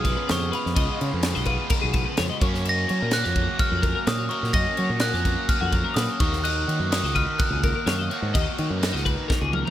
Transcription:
Already playing: B1 C#3 G#3 B3 F4 D#6
0.04 B4, kick, crash
0.17 B4
0.28 F2 C#5 C#6, snare, crash
0.40 D#5
0.52 B4 B5, crash
0.66 F2, snare
0.75 C#2 C#3 G#3 B3 F4 D#5, kick, crash
0.99 C#3 C#5, crash
1.11 F2 B4
1.23 snare, crash
1.35 B1 D#5, snare
1.45 G#3 B3 F4 B4, kick, crash
1.50 C#3
1.70 A#4, kick, crash
1.81 B1 G#4
1.93 B4, kick, crash
2.05 B4
2.17 F2 C#5, snare, crash
2.30 D#5
2.40 F#2 F#3 A#3 C#4 F#4 C#5, kick, crash
2.54 snare
2.65 D#5, crash
2.69 A#6
2.88 F#3 C#5, crash
3.01 A#2 A#4
3.11 F#3 A#3 C#4 F#6, snare, crash
3.15 F#4
3.24 F2 C#5, snare
3.35 A#4, kick, crash
3.59 G#4 F6, kick, crash
3.71 F2 F#4
3.82 A#4, kick, crash
3.95 A#4
4.07 A#2 C#5 D#6, snare, crash
4.18 C#5
4.29 F#3 A#3 C#4 A#4 C#6, crash
4.33 F#4
4.43 A#2, snare
4.53 F#2 D#5 A#6, kick, crash
4.77 F#3 C#5, crash
4.90 A#2 A#4
5.00 F#3 A#3 F#6, snare, crash
5.04 C#4 F#4
5.13 F2 C#5, snare
5.25 A#4, kick, crash
5.48 G#4 F6, kick, crash
5.61 F2 F#4
5.72 A#4, kick, crash
5.84 A#4
5.94 A#2 B4 D#6, snare, crash
6.08 C#5
6.20 D#2 D#3 A#3 D#4 F#4 A#4 C#6, kick, crash
6.33 snare
6.44 D#5 F#6, crash
6.68 D#3 C#5, crash
6.80 F#2 B4
6.91 D#3 A#3 D#4 D#6, snare, crash
6.95 F#4
7.03 C#2 D#5, snare
7.15 B4 F6, kick, crash
7.39 A#4 F#6, kick, crash
7.51 C#2 G#4
7.64 A#4, kick, crash
7.76 A#4
7.86 F#2 C#5, snare, crash
7.98 D#5
8.10 D#3 A#3 D#4 C#5, crash
8.14 F#4
8.22 G#2
8.34 D#2 D#5, kick, crash
8.57 D#3 C#5, crash
8.70 F#2 B4
8.80 D#3 A#3 D#4 F#4, snare, crash
8.93 C#2 D#5, snare
9.05 B4, kick, crash
9.28 A#4, kick, snare
9.41 C#2 G#4
9.53 A#4, high tom
9.65 A#4

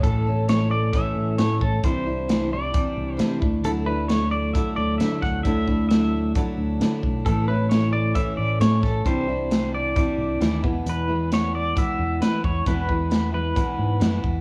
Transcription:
0.03 A1 A2 E3 A3 C#4 A4, kick, closed hi-hat
0.27 A3 C#4 A4
0.49 E3 A3 C#4 A4 C#5, snare, closed hi-hat
0.71 D5
0.93 A2 E3 A3 C#4 A4 E5, kick, closed hi-hat
1.16 A1
1.38 A2 E3 A3 C#4 A4 C#5, snare, closed hi-hat
1.61 A1 A3 C#4 A4, kick
1.84 C2 C3 E3 G3 D4 E4 C5, kick, closed hi-hat
2.06 G3 D4 E4
2.28 E3 G3 D4 E4, snare, closed hi-hat
2.51 G3 D4 E4 D5
2.73 C3 E3 G3 D4 E4, kick, closed hi-hat
2.97 C2
3.14 E3 C5
3.18 C3 G3 D4 E4, snare, closed hi-hat
3.41 D2 A3 D4 E4, kick
3.64 D2 D3 F#3 A3 D4 E4 A4, closed hi-hat
3.86 A3 D4 E4 B4
4.09 F#3 A3 D4 E4 C#5, snare, closed hi-hat
4.31 D5
4.53 D3 F#3 A3 D4 E4 E5, kick, closed hi-hat
4.76 D2 D5
4.98 D3 F#3 A3 D4 E4 E5, snare, closed hi-hat
5.22 D2 F#5, kick, snare
5.43 D2 D3 F#3 A3 D4 E4 E5, kick, closed hi-hat
5.67 A3 D4 E4, kick
5.89 F#3 A3 D4 E5, snare, closed hi-hat
5.93 E4
6.35 D3 F#3 A3 D4 E4, kick, closed hi-hat
6.58 D2
6.80 D3 F#3 A3 D4 E4, snare, closed hi-hat
7.03 B1, kick
7.25 A1 A2 E3 A3 C#4 E4 A4, kick, closed hi-hat
7.48 A3 C#4 E4 B4
7.69 E3 A3 C#4 E4 C#5, snare, closed hi-hat
7.93 D5
8.15 A2 E3 A3 C#4 E4 E5, kick, closed hi-hat
8.37 A1 D5
8.60 A2 E3 A3 C#4 E4 C#5, snare, closed hi-hat
8.83 A1 A4, kick, snare
9.05 C2 C3 E3 G3 D4 E4 C5, kick, closed hi-hat
9.28 G3 D4 E4
9.50 E3 G3 D4 E4, snare, closed hi-hat
9.75 D5
9.95 C3 E3 G3 D4 E4, kick, closed hi-hat
10.18 C2
10.40 D#2 E3 G3 D4 E4, snare, closed hi-hat
10.62 E2 B2 E3 G#3 B3 E4, kick
10.86 E2 B4, closed hi-hat
11.07 E3 G#3 B3 E4
11.31 E3 G#3 B3 E4 C#5, snare, closed hi-hat
11.55 D5
11.75 E2 B2 E3 G#3 B3 E4 E5, kick, closed hi-hat
11.99 E2
12.21 E3 G#3 B3 E4 B4, snare, closed hi-hat
12.44 E2 C#5, kick
12.66 E2 B2 E3 G#3 B3 E4 B4, kick, closed hi-hat
12.88 E3 G#3 B3 E4, kick
13.10 E3 G#3 B3 E4, snare, closed hi-hat
13.32 E3 G#3 B3 E4 B4
13.55 E2 B2 E3 G#3 B3 E4, kick, closed hi-hat
13.79 G#2
14.00 F#2 E3 G#3 B3 E4, snare, closed hi-hat
14.24 E2, kick

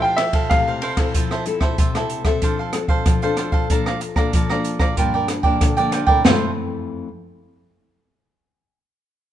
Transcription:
Already playing: F3 A3 E4 G4
0.02 A4 C5 F5 G5
0.17 E5, muted cavaquinho stroke, cross-stick, ride
0.33 A4 C5 F5, kick, ride
0.50 C3 A3 E4 G4 F5, kick, cross-stick, ride
0.68 A4 C5 F5
0.82 E4 A4 C5 F5, ride
0.97 C4 E4 A4 C5 F5, kick, cross-stick, ride
1.14 F3 F4 A4 C5 E5, kick, closed hi-hat
1.31 A4 C5 E5, cross-stick
1.46 C4 E4 A4, muted cavaquinho stroke, closed hi-hat
1.60 A4 C5 E5, kick, cross-stick
1.78 C3 F4 A4 C5 E5, kick, closed hi-hat
1.95 C4 E4 A4 C5 E5, cross-stick, closed hi-hat
2.10 closed hi-hat
2.25 C4 D4 A4 C5 E5, kick, cross-stick, closed hi-hat
2.42 F3 D4 A4 C5 F5, kick, closed hi-hat
2.59 A4 C5 F5
2.73 C4 D4 A4, muted cavaquinho stroke, cross-stick, closed hi-hat
2.88 A4 C5 F5, kick
3.06 F3, kick, cross-stick, closed hi-hat
3.22 C4 D4 A4 C5 F5, closed hi-hat
3.37 D4 A4 C5 F5, cross-stick, closed hi-hat
3.52 A4 C5 F5, kick
3.70 F3 A#3 D4 A4 D5 F5 A#5, kick, closed hi-hat
3.86 D5 F5 A#5, cross-stick
4.01 muted cavaquinho stroke, closed hi-hat
4.16 A#3 D4 A4 D5 F5 A#5, kick, cross-stick
4.33 F3 A4 D5 F5 A#5, kick, closed hi-hat
4.50 A#3 D4 D5 F5 A#5, cross-stick
4.65 closed hi-hat
4.80 D5 F5 A#5, kick, cross-stick
4.97 G2 F3 A#3 D4 F4 A#4 D5 G5, kick, closed hi-hat
5.14 A#4 D5 G5
5.28 muted cavaquinho stroke, cross-stick, closed hi-hat
5.43 F3 A#3 D4 A#4 D5 G5, kick
5.61 D3, kick, cross-stick, closed hi-hat
5.77 F3 A#3 D4 A#4 D5 G5, closed hi-hat
5.92 F4 A#4 D5 G5, cross-stick, closed hi-hat
6.07 E3 A3 C4 A#4 D5 G5, kick
6.24 F2 E3 A3 C4 F4 A4 C5 E5, snare, floor tom

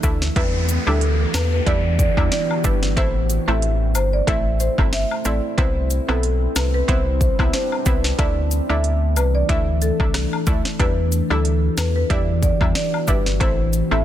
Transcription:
Already playing: E3 A3 D4
0.03 D2 A3 D4 E4, kick, closed hi-hat, cabasa
0.22 snare
0.36 E2 E3 G3 B3 D4 E4 F#4 G4 B4, kick, closed hi-hat, downlifter, high woodblock
0.69 closed hi-hat, cabasa
0.87 D2 G3 D4 E4 A4, high woodblock
1.01 closed hi-hat
1.34 E2 B4, snare, closed hi-hat, cabasa, high woodblock
1.52 B4
1.66 E2 G3 D4 E4 D5, kick, closed hi-hat
1.99 D5, kick, closed hi-hat, cabasa
2.17 E2 G3 D4 E4, kick, high woodblock
2.32 D5, snare, closed hi-hat
2.51 high woodblock
2.64 G1 G3 D4 E4 B4, kick, closed hi-hat, cabasa
2.83 snare
2.97 A1 A3 C4 E4 C5, kick, closed hi-hat, high woodblock
3.30 closed hi-hat, cabasa
3.48 A1 A3 C4 E4 E5, high woodblock
3.62 closed hi-hat
3.95 G1 C5, closed hi-hat, cabasa, high woodblock
4.13 D5
4.27 A1 A3 C4 E4 E5, kick, closed hi-hat
4.60 C5, closed hi-hat, cabasa
4.78 G1 A3 C4 E4, kick, high woodblock
4.93 E5, snare, closed hi-hat
5.11 high woodblock
5.25 A1 A3 C4 E4 D5, closed hi-hat, cabasa
5.58 C2 G3 B3 C4 D4 E4 C5, kick, closed hi-hat, high woodblock
5.90 closed hi-hat, cabasa
6.08 B1 B3 C4 E4 A4, high woodblock
6.23 closed hi-hat
6.56 C2 B4, snare, closed hi-hat, cabasa, high woodblock
6.74 B4
6.88 C2 B3 C4 E4 C5, kick, closed hi-hat
7.21 C5, kick, closed hi-hat, cabasa
7.39 C2 B3 C4 E4, kick, high woodblock
7.53 C5, snare, closed hi-hat
7.72 high woodblock
7.86 C2 B3 C4 E4 B4, kick, closed hi-hat, cabasa
8.04 snare
8.18 D2 E3 A3 D4 E4 D5, kick, closed hi-hat, high woodblock
8.51 closed hi-hat, cabasa
8.69 D2 A3 D4 E4 E5, high woodblock
8.84 closed hi-hat
9.16 C2 B4, closed hi-hat, cabasa, high woodblock
9.35 D5
9.49 D2 A3 D4 E4 E5, kick, closed hi-hat
9.82 A4, closed hi-hat, cabasa
10.00 C2 A3 D4 E4, kick, high woodblock
10.14 cross-stick, snare, closed hi-hat
10.33 high woodblock
10.47 D2 A3 D4 E4, kick, closed hi-hat, cabasa
10.65 snare
10.79 E2 E3 G3 B3 D4 E4 F#4 G4 B4, kick, closed hi-hat, high woodblock
11.12 closed hi-hat, cabasa
11.30 D2 G3 D4 E4 A4, high woodblock
11.45 closed hi-hat
11.77 E2 B4, snare, closed hi-hat, cabasa, high woodblock
11.96 B4
12.10 E2 G3 D4 E4 D5, kick, closed hi-hat
12.43 D5, kick, closed hi-hat, cabasa
12.61 E2 G3 D4 E4, kick, high woodblock
12.75 D5, snare, closed hi-hat
12.94 high woodblock
13.07 G1 G3 D4 E4 B4, kick, closed hi-hat, cabasa
13.26 snare
13.40 A1 A3 C4 E4 C5, kick, closed hi-hat, high woodblock
13.73 closed hi-hat, cabasa
13.91 A1 A3 C4 E4 E5, high woodblock

